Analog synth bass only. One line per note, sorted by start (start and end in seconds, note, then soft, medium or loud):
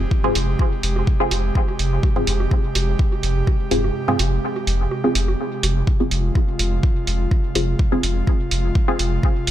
0.35 0.55 F1 loud
0.83 1.03 F1 loud
1.31 1.51 F1 loud
1.79 1.99 F1 medium
2.27 2.47 F1 loud
2.75 2.95 F1 loud
3.23 3.43 F1 medium
3.71 3.91 F1 medium
4.19 4.39 F1 loud
4.67 4.87 F1 loud
5.15 5.35 F1 loud
5.63 5.83 F1 medium
6.11 6.31 F1 loud
6.59 6.79 F1 loud
7.07 7.27 F1 medium
7.55 7.75 F1 medium
8.03 8.23 F1 loud
8.51 8.71 F1 loud
8.99 9.19 F1 loud
9.47 9.51 F1 medium